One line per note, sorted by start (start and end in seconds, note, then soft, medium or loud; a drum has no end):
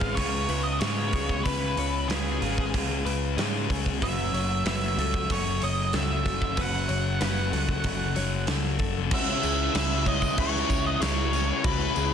0.00 0.16 G#1 medium
0.00 0.16 C#3 medium
0.00 0.79 C#3 medium
0.00 0.16 G#3 medium
0.00 0.50 G#3 medium
0.00 0.17 B3 medium
0.00 0.48 C#4 medium
0.00 0.17 F4 medium
0.00 0.82 G#4 medium
0.00 0.50 B4 medium
0.00 0.19 F5 medium
0.00 kick medium
0.15 0.47 C#2 medium
0.15 0.82 C#3 medium
0.15 0.83 G#3 medium
0.15 0.83 B3 medium
0.15 0.83 F4 medium
0.15 0.63 C#5 medium
0.15 kick medium
0.15 open hi-hat medium
0.49 0.79 C#2 medium
0.49 0.80 G#3 medium
0.49 0.81 C#4 medium
0.49 0.81 B4 medium
0.49 open hi-hat medium
0.63 0.80 D#5 medium
0.80 1.11 G#2 medium
0.80 1.43 C#3 medium
0.80 1.44 C#3 medium
0.80 1.44 G#3 medium
0.80 1.46 C#4 medium
0.80 1.12 G#4 medium
0.80 1.47 C#5 medium
0.80 snare loud
0.80 open hi-hat medium
0.84 1.45 G#3 medium
0.84 1.46 B3 medium
0.84 1.46 F4 medium
1.13 1.43 C#2 medium
1.13 1.45 G#4 medium
1.13 kick medium
1.13 open hi-hat soft
1.29 kick medium
1.44 1.75 C#2 medium
1.44 2.07 C#3 medium
1.44 2.08 C#3 medium
1.44 1.79 G#3 medium
1.44 2.09 G#3 medium
1.44 2.10 B3 medium
1.44 1.77 C#4 loud
1.44 2.10 F4 loud
1.44 2.08 B4 medium
1.44 1.78 B4 medium
1.44 kick medium
1.44 open hi-hat medium
1.77 2.07 C#2 medium
1.77 2.09 G#3 soft
1.77 2.11 C#4 medium
1.77 2.11 C#5 medium
1.77 open hi-hat soft
2.08 2.39 C#2 medium
2.08 2.73 C#3 medium
2.08 2.42 G#3 medium
2.08 2.42 B3 medium
2.08 2.40 C#4 medium
2.08 2.41 F4 medium
2.08 2.69 G#4 medium
2.08 2.43 B4 medium
2.08 snare loud
2.08 open hi-hat medium
2.40 2.71 G#1 medium
2.40 3.05 G#3 medium
2.40 2.73 G#3 medium
2.40 2.74 B3 medium
2.40 3.04 C#4 medium
2.40 2.74 F4 medium
2.40 3.06 G#4 medium
2.40 open hi-hat soft
2.58 kick medium
2.74 3.04 C#2 medium
2.74 3.38 C#3 medium
2.74 3.38 G#3 medium
2.74 3.39 B3 medium
2.74 3.39 F4 medium
2.74 kick medium
2.74 open hi-hat medium
3.04 3.35 C#2 medium
3.04 3.37 G#3 medium
3.04 3.40 C#4 medium
3.04 3.38 B4 medium
3.04 open hi-hat medium
3.37 3.67 G#2 medium
3.37 4.00 C#3 medium
3.37 4.01 C#3 medium
3.37 4.00 G#3 medium
3.37 4.01 G#3 medium
3.37 4.01 B3 medium
3.37 6.90 C#4 medium
3.37 4.01 F4 medium
3.37 3.69 G#4 medium
3.37 snare medium
3.37 open hi-hat medium
3.70 4.00 C#2 medium
3.70 4.02 G#4 medium
3.70 kick medium
3.70 open hi-hat soft
3.86 kick medium
4.02 4.31 F#1 medium
4.02 4.65 F#2 medium
4.02 5.29 F#2 medium
4.02 4.98 C#3 medium
4.02 4.35 C#3 medium
4.02 4.66 F#3 loud
4.02 4.34 F#3 loud
4.02 4.66 A3 loud
4.02 4.67 C#4 loud
4.02 4.68 F#4 loud
4.02 4.34 B4 medium
4.02 4.67 E5 medium
4.02 kick medium
4.02 open hi-hat medium
4.32 4.63 F#1 medium
4.32 4.66 C#3 medium
4.32 4.68 F#3 medium
4.32 4.65 C#5 medium
4.32 open hi-hat medium
4.65 4.95 F#1 medium
4.65 5.93 F#2 medium
4.65 4.99 C#3 medium
4.65 5.00 F#3 medium
4.65 4.97 F#3 medium
4.65 4.99 A3 medium
4.65 4.99 C#4 medium
4.65 4.98 F#4 medium
4.65 4.98 B4 medium
4.65 5.32 E5 medium
4.65 snare loud
4.65 open hi-hat medium
4.98 5.27 C#2 medium
4.98 5.63 C#3 medium
4.98 5.60 F#3 medium
4.98 5.29 F#3 medium
4.98 5.30 A3 medium
4.98 5.31 C#4 medium
4.98 5.30 F#4 medium
4.98 5.63 A4 medium
4.98 open hi-hat medium
5.14 kick medium
5.29 5.60 F#1 medium
5.29 6.25 F#2 medium
5.29 6.26 C#3 medium
5.29 5.92 F#3 medium
5.29 5.93 A3 medium
5.29 5.94 C#4 medium
5.29 5.94 F#4 medium
5.29 5.63 C#5 medium
5.29 kick loud
5.29 open hi-hat medium
5.61 5.91 F#1 medium
5.61 5.93 C#3 medium
5.61 5.95 F#3 medium
5.61 6.57 C#5 medium
5.61 5.96 D#5 medium
5.61 open hi-hat soft
5.93 6.23 C#2 medium
5.93 6.56 F#2 medium
5.93 6.57 C#3 medium
5.93 6.56 F#3 medium
5.93 6.59 F#3 medium
5.93 6.57 A3 medium
5.93 6.57 C#4 medium
5.93 6.57 F#4 medium
5.93 6.24 A4 medium
5.93 6.61 E5 loud
5.93 snare loud
5.93 open hi-hat medium
6.25 6.55 F#1 medium
6.25 6.57 A4 medium
6.25 kick medium
6.25 open hi-hat soft
6.42 kick medium
6.57 6.87 F#1 medium
6.57 7.53 F#2 medium
6.57 7.20 F#2 medium
6.57 7.53 C#3 medium
6.57 6.91 C#3 medium
6.57 7.19 F#3 medium
6.57 6.88 F#3 medium
6.57 7.20 A3 medium
6.57 7.21 C#4 loud
6.57 7.21 F#4 loud
6.57 6.88 B4 medium
6.57 kick loud
6.57 open hi-hat medium
6.61 8.46 F#5 loud
6.88 7.19 F#1 medium
6.88 7.21 C#3 medium
6.88 7.22 F#3 medium
6.88 7.20 C#5 medium
6.88 open hi-hat soft
7.20 7.50 F#1 medium
7.20 7.85 F#2 medium
7.20 7.54 C#3 medium
7.20 7.53 F#3 medium
7.20 7.51 F#3 medium
7.20 7.52 A3 medium
7.20 7.52 C#4 medium
7.20 7.50 F#4 medium
7.20 7.53 B4 medium
7.20 snare loud
7.20 open hi-hat medium
7.52 7.82 C#2 medium
7.52 8.17 C#3 medium
7.52 8.14 F#3 medium
7.52 7.83 F#3 medium
7.52 7.84 A3 medium
7.52 7.84 C#4 medium
7.52 7.85 F#4 medium
7.52 8.16 A4 medium
7.52 open hi-hat medium
7.69 kick medium
7.84 8.14 F#1 loud
7.84 8.80 F#2 medium
7.84 8.80 C#3 medium
7.84 8.46 F#3 medium
7.84 8.47 A3 medium
7.84 8.47 C#4 medium
7.84 8.48 F#4 loud
7.84 kick medium
7.84 open hi-hat medium
8.16 8.46 F#1 medium
8.16 8.48 C#3 medium
8.16 8.49 F#3 medium
8.16 8.48 C#5 medium
8.16 snare soft
8.16 open hi-hat soft
8.47 8.78 C#2 medium
8.47 9.10 F#2 medium
8.47 9.10 C#3 medium
8.47 9.10 F#3 medium
8.47 9.11 F#3 medium
8.47 9.10 A3 medium
8.47 9.10 C#4 medium
8.47 9.10 F#4 medium
8.47 8.78 A4 medium
8.47 snare loud
8.47 open hi-hat medium
8.79 9.13 F#1 medium
8.79 9.11 A4 medium
8.79 kick medium
8.79 open hi-hat soft
9.10 9.36 C#2 medium
9.10 12.14 C#3 medium
9.10 9.73 C#3 medium
9.10 9.44 G#3 loud
9.10 12.14 G#3 medium
9.10 12.14 C#4 medium
9.10 9.42 C#4 loud
9.10 12.14 E4 medium
9.10 9.43 F#4 loud
9.10 12.14 B4 medium
9.10 12.14 G#5 medium
9.10 12.14 C#6 medium
9.10 kick loud
9.10 crash loud
9.10 tambourine soft
9.10 crash medium
9.14 12.14 E4 loud
9.14 9.75 E5 loud
9.42 9.68 C#2 medium
9.42 9.74 G#3 medium
9.42 9.75 C#4 medium
9.42 11.00 G#4 medium
9.42 tambourine medium
9.42 crash medium
9.60 tambourine soft
9.73 10.25 C#2 loud
9.73 10.36 C#3 medium
9.73 10.08 G#3 medium
9.73 10.05 C#4 medium
9.73 10.05 B4 medium
9.73 10.08 E5 loud
9.73 snare loud
9.73 tambourine loud
9.73 crash loud
9.91 tambourine soft
10.05 10.38 G#3 medium
10.05 10.38 C#4 medium
10.05 10.38 C#5 medium
10.05 10.39 D#5 loud
10.05 kick medium
10.05 crash medium
10.22 kick medium
10.22 tambourine medium
10.37 10.63 C#2 loud
10.37 11.00 C#3 medium
10.37 10.71 G#3 medium
10.37 10.67 C#4 loud
10.37 10.86 C#5 medium
10.37 11.67 E5 medium
10.37 kick loud
10.37 crash loud
10.55 snare soft
10.68 10.95 C#2 medium
10.68 11.02 G#3 medium
10.68 11.03 C#4 medium
10.68 11.00 C#5 medium
10.68 kick medium
10.68 tambourine medium
10.68 crash medium
10.86 11.01 D#5 loud
11.00 11.51 C#2 medium
11.00 11.63 C#3 medium
11.00 11.35 G#3 medium
11.00 11.32 C#4 medium
11.00 11.63 G#4 medium
11.00 11.66 C#5 loud
11.00 snare loud
11.00 tambourine loud
11.00 crash medium
11.33 11.66 G#3 medium
11.33 11.66 C#4 medium
11.33 tambourine medium
11.33 crash medium
11.64 11.90 C#2 medium
11.64 12.14 C#3 medium
11.64 11.97 G#3 loud
11.64 11.94 C#4 loud
11.64 11.95 F#4 medium
11.64 12.14 B4 loud
11.64 kick loud
11.64 tambourine soft
11.64 crash medium
11.80 tambourine soft
11.95 12.14 C#2 medium
11.95 12.14 G#3 medium
11.95 12.14 C#4 medium
11.95 12.14 G#4 medium
11.95 tambourine medium
11.95 crash medium